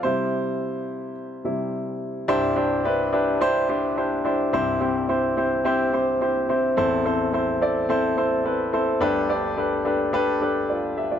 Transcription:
<<
  \new Staff \with { instrumentName = "Grand piano" } { \time 4/4 \key c \major \tempo 4 = 107 c''2 r2 | <d' e' g' c''>8 <d' e' g' c''>8 <d' e' g' b'>8 <d' e' g' b'>8 <d' e' g' c''>8 <d' e' g' c''>8 <d' e' g' c''>8 <d' e' g' c''>8 | <c' e' g' c''>8 <c' e' g' c''>8 <c' e' g' c''>8 <c' e' g' c''>8 <c' e' g' c''>8 <c' e' g' c''>8 <c' e' g' c''>8 <c' e' g' c''>8 | <c' e' a' c''>8 <c' e' a' c''>8 <c' e' a' c''>8 <c' e' a' d''>8 <c' e' a' c''>8 <c' e' a' c''>8 <c' e' a' b'>8 <c' e' a' c''>8 |
<d' g' a' b'>8 <d' g' a' d''>8 <d' g' a' b'>8 <d' g' a' b'>8 <d' g' a' b'>8 <d' g' a' b'>8 <f' d''>8 <g' e''>16 <f' d''>16 | }
  \new Staff \with { instrumentName = "Grand piano" } { \clef bass \time 4/4 \key c \major <c g e'>8 r2 <c g e'>8 r4 | <c, g,>1 | <c, g,>1 | <a,, e,>1 |
<g,, d,>1 | }
>>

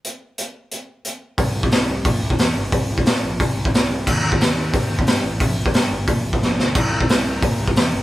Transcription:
<<
  \new Staff \with { instrumentName = "Picked electric bass" } { \clef bass \time 4/4 \key bes \lydian \tempo 4 = 179 r1 | c,8 c,8 c,8 c,8 bes,8 c,8 e,8 g,,8 | c,8 c,8 bes,8 bes,,8 c8 c,8 c,8 c,8 | ees,8 ees,8 ees,8 ees,8 c8 ees,8 g,8 a,,8 |
bes,,8 bes,,8 g,8 g,,8 bes,8 bes,,8 bes,,8 d,8 | c,8 c,8 c,8 c,8 bes,8 c,8 e,8 g,,8 | }
  \new DrumStaff \with { instrumentName = "Drums" } \drummode { \time 4/4 hh4 hh4 hh4 hh4 | <hho bd>8. bd16 <hho sn>4 <hho bd>8. bd16 <hho sn>4 | <hho bd>8. bd16 <hho sn>4 <hho bd>8. bd16 <hho sn>4 | <cymc bd>8. bd16 <hho sn>4 <hho bd>8. bd16 <hho sn>4 |
<hho bd>8. bd16 <hho sn>4 <hho bd>8. bd16 sn8 sn8 | <cymc bd>8. bd16 <hho sn>4 <hho bd>8. bd16 <hho sn>4 | }
>>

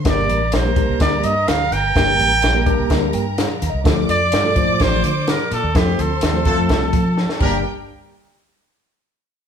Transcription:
<<
  \new Staff \with { instrumentName = "Violin section" } { \time 4/4 \key g \minor \tempo 4 = 126 <bes' bes''>1~ | <bes' bes''>1 | <d'' d'''>1 | <c'' c'''>2 <a' a''>4. <d' bes' g''>8 |
r1 | }
  \new Staff \with { instrumentName = "Trumpet" } { \time 4/4 \key g \minor d''4 c''4 d''8 ees''8 f''8 g''8~ | g''2~ g''8 r4. | r8 d''4. c''8 c''8 bes'8 a'8 | g'8 a'2. g'8 |
r1 | }
  \new Staff \with { instrumentName = "Tine electric piano" } { \time 4/4 \key g \minor << { r1 | r4. d'''8 bes''8 g''8 \tuplet 3/2 { f''4 ees''8 } | r1 | r1 |
r1 | } \\ { <g bes d' g' bes'>8. r8 <g bes d' g' bes'>16 <g bes d' g' bes'>4~ <g bes d' g' bes'>16 r4 r16 | <g bes d' g' bes'>8. r8 <g bes d' g' bes'>16 <g bes d' g' bes'>4~ <g bes d' g' bes'>16 r4 r16 | <f a d' f' a'>8. r8 <f a d' f' a'>16 <f a d' f' c''>4~ <f a d' f' c''>16 r4 r16 | <f a c' f' a'>8. r8 <f a c' f' c''>16 <f a c' f' a'>4~ <f a c' f' a'>16 r8. <g bes d' g'>8 |
r1 | } >> }
  \new Staff \with { instrumentName = "Horn section" } { \time 4/4 \key g \minor r1 | r1 | r1 | r4 <a c' f' a'>16 r16 <a c' f' a'>8. r4 r16 <g bes d' bes'>8 |
r1 | }
  \new Staff \with { instrumentName = "Fingered electric bass" } { \clef bass \time 4/4 \key g \minor g,,8 a,,8 bes,,8. c,16 d,8 g,8 d,8 g,,8 | g,,8 a,,8 bes,,8. c,16 d,8 g,8. r16 ees,16 c,16 | d,8 f,8 g,8. a,16 a,,8 d8. r16 bes,16 ees,16 | f,8 d,8 ees,8. f,16 c,8 f8. r16 g,,8 |
r1 | }
  \new DrumStaff \with { instrumentName = "Drums" } \drummode { \time 4/4 <hh bd sn>8 hh8 <hh sn>8 <hh bd>8 <hh bd sn>8 hh8 <hh sn>8 <hh sn>8 | <hh bd sn>8 hh8 <hh sn>8 <hh bd>8 <hh bd sn>8 hh8 <hh sn>8 <hh sn>8 | <hh bd sn>8 hh8 <hh sn>8 <hh bd>8 <hh bd sn>8 hh8 <hh sn>8 <hh sn>8 | <hh bd sn>8 hh8 <hh sn>8 <hh bd>8 <hh bd sn>8 <hh bd>8 sn16 sn16 <cymc bd>8 |
r4 r4 r4 r4 | }
>>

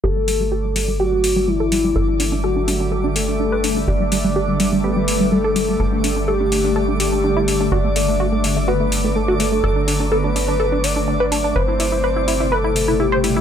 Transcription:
<<
  \new Staff \with { instrumentName = "Synth texture" } { \time 4/4 \key g \major \tempo 4 = 125 <d'' d'''>1~ | <d'' d'''>1~ | <d'' d'''>1~ | <d'' d'''>1~ |
<d'' d'''>1~ | <d'' d'''>1~ | <d'' d'''>1 | }
  \new Staff \with { instrumentName = "Soft synth lead" } { \time 4/4 \key g \major a'2 fis'4 e'4~ | e'4 fis'4. a'4. | d''2 b'4 a'4~ | a'4 g'4. g'4. |
d''2 b'4 a'4~ | a'4 b'4. d''4. | c''2 a'4 g'4 | }
  \new Staff \with { instrumentName = "Synth arpeggio sound" } { \time 4/4 \key g \major g'16 g16 g16 g16 g'16 g16 g16 g16 g'16 g16 r16 g16 g16 a'16 g16 g16 | a'16 d'16 d'16 d'16 a'16 d'16 d'16 d'16 a'16 d'16 r16 d'16 d'16 b'16 d'16 d'16 | g'16 g16 g16 g16 g'16 g16 g16 g16 g'16 g16 r16 g16 g16 a'16 g16 g16 | a'16 d'16 d'16 d'16 a'16 d'16 d'16 d'16 a'16 d'16 r16 d'16 d'16 e'16 d'16 d'16 |
fis'16 a16 a16 a16 fis'16 a16 a16 a16 fis'16 a16 r16 a16 a16 fis'16 a16 a16 | a'16 d'16 d'16 d'16 a'16 d'16 d'16 d'16 a'16 d'16 r16 d'16 d'16 b'16 d'16 d'16 | b'16 e'16 e'16 e'16 b'16 e'16 e'16 e'16 b'16 e'16 r16 e'16 e'16 c''16 e'16 e'16 | }
  \new Staff \with { instrumentName = "Ambient pad" } { \clef bass \time 4/4 \key g \major << { g1~ | g1~ | g1~ | g1 |
fis1~ | fis1 | a1 | } \\ { <d a>1~ | <d a>1~ | <d a>1~ | <d a>1~ |
<d a>1~ | <d a>1 | <b, c>1 | } >> }
  \new Staff \with { instrumentName = "Analog synth bass" } { \clef bass \time 4/4 \key g \major g,,1 | g,,1 | g,,1 | g,,1 |
g,,1 | g,,1 | g,,1 | }
  \new DrumStaff \with { instrumentName = "Drums" } \drummode { \time 4/4 r8 hho8 r8 hho8 r8 hho8 r8 hho8 | r8 hho8 r8 hho8 r8 hho8 r8 hho8 | r8 hho8 r8 hho8 r8 hho8 r8 hho8 | r8 hho8 r8 hho8 r8 hho8 r8 hho8 |
r8 hho8 r8 hho8 r8 hho8 r8 hho8 | r8 hho8 r8 hho8 r8 hho8 r8 hho8 | r8 hho8 r8 hho8 r8 hho8 r8 hho8 | }
>>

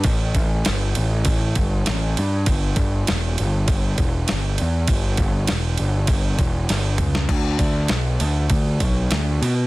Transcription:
<<
  \new Staff \with { instrumentName = "Picked electric bass" } { \clef bass \time 4/4 \key e \dorian \tempo 4 = 99 a,,8 a,,8 g,,8 a,,8 a,,8 g,,8 a,,8 g,8 | g,,8 g,,8 e,,8 g,,8 g,,8 e,,8 g,,8 e,8 | g,,8 g,,8 e,,8 g,,8 g,,8 e,,8 g,,8 cis,8 | d,8 d,8 b,,8 d,8 d,8 b,,8 d,8 b,8 | }
  \new DrumStaff \with { instrumentName = "Drums" } \drummode { \time 4/4 <bd cymr>8 <bd cymr>8 <cymr sn>8 cymr8 <bd cymr>8 <bd cymr>8 <cymr sn>8 cymr8 | <bd cymr>8 <bd cymr>8 <cymr sn>8 cymr8 <bd cymr>8 <bd cymr>8 <cymr sn>8 cymr8 | <bd cymr>8 <bd cymr>8 <cymr sn>8 cymr8 <bd cymr>8 <bd cymr>8 <cymr sn>8 <cymr toml>16 sn16 | <cymc bd>8 <bd cymr>8 <cymr sn>8 cymr8 <bd cymr>8 <bd cymr>8 <cymr sn>8 cymr8 | }
>>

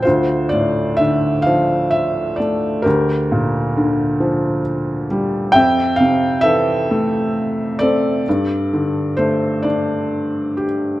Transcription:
<<
  \new Staff \with { instrumentName = "Felt piano" } { \time 6/8 \key d \minor \tempo 4. = 44 << { c''8 d''8 e''8 f''8 e''8 d''8 | bes'2 r4 | g''8 f''8 e''4. d''8~ | d''4 c''8 d''4 r8 | } \\ { f'4. r4. | g'2 r4 | e''4 a'4. a'8~ | a'4 r2 | } >> }
  \new Staff \with { instrumentName = "Felt piano" } { \clef bass \time 6/8 \key d \minor d,8 a,8 d8 f4 a8 | d,8 bes,8 d8 f4 g8 | f,8 c8 e8 a4 c'8 | g,8 d8 a8 d'4 g'8 | }
>>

